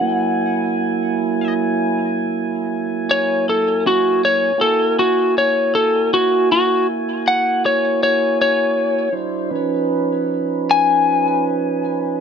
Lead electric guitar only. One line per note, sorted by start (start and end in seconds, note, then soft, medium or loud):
0.00 1.53 F#5 medium
3.11 3.45 C#5 medium
3.49 3.83 A4 medium
3.87 4.21 F#4 medium
4.25 4.59 C#5 medium
4.61 4.96 A4 medium
4.99 5.34 F#4 medium
5.38 5.73 C#5 medium
5.75 6.10 A4 medium
6.14 6.48 F#4 medium
6.52 6.86 F#4 medium
7.28 7.62 F#5 medium
7.66 8.00 C#5 medium
8.03 8.38 C#5 medium
8.42 9.13 C#5 medium
10.71 12.20 G#5 medium